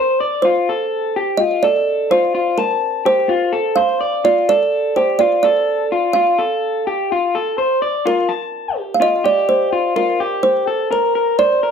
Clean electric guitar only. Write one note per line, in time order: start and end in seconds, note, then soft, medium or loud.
0.00 0.20 C5 medium
0.20 0.44 D5 medium
0.45 0.69 F4 loud
0.69 1.14 A4 medium
1.16 1.40 G4 medium
1.40 1.64 F4 medium
1.64 2.09 A4 medium
2.11 2.33 F4 medium
2.35 2.59 F4 medium
2.58 3.03 A5 medium
3.05 3.30 G4 medium
3.29 3.53 F4 medium
3.53 3.77 A4 medium
3.77 4.00 C5 medium
4.01 4.25 D5 medium
4.24 4.49 F4 loud
4.49 4.94 A4 medium
4.97 5.20 G4 medium
5.20 5.44 F4 medium
5.44 5.89 A4 medium
5.92 6.14 F4 medium
6.15 6.39 F4 loud
6.39 6.84 A4 medium
6.87 7.11 G4 medium
7.12 7.35 F4 medium
7.35 7.58 A4 medium
7.58 7.82 C5 medium
7.82 8.06 D5 medium
8.06 8.30 F4 loud
8.29 8.77 A5 medium
8.77 9.01 G4 medium
9.01 9.25 F4 medium
9.24 9.69 G4 medium
9.72 9.95 F4 medium
9.96 10.20 F4 medium
10.20 10.65 G4 medium
10.67 10.91 A4 medium
10.91 11.14 A#4 medium
11.15 11.39 A#4 medium
11.39 11.62 C5 medium
11.63 11.71 A#4 medium